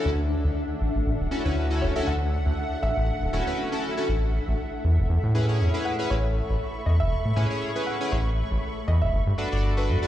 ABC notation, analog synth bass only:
X:1
M:4/4
L:1/16
Q:"Swing 16ths" 1/4=119
K:D
V:1 name="Analog synth bass" clef=bass
D,,2 z D,, z2 A,,, A,,, A,,, D,,, z D,,3 D,,, z | D,,2 z D,, z2 A,,, A,,, z D,,, D,,, z4 z | A,,,2 z A,,, z2 E,, E,,, E,, A,,3 E,, z3 | A,,,2 z A,,, z2 E,, E,,, z A,, A,, z4 z |
A,,,2 z A,,, z2 E,, E,,, G,,, G,, z G,,,3 G,, z |]